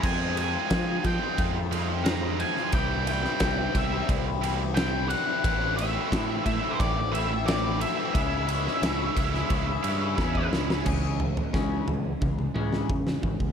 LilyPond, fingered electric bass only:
\new Staff \with { instrumentName = "Fingered electric bass" } { \clef bass \time 4/4 \key des \lydian \tempo 4 = 89 f,4 f8 f16 r16 f,2 | c,4 c,8 c,8 c,2 | a,,4 a,8 a,16 r16 a,,2 | des,4 des,8 des,8 des,8 g,8 fes,8 des,8 |
des,4 des,8 des,8 des,8 des,8 des8 aes,,16 des,16 | }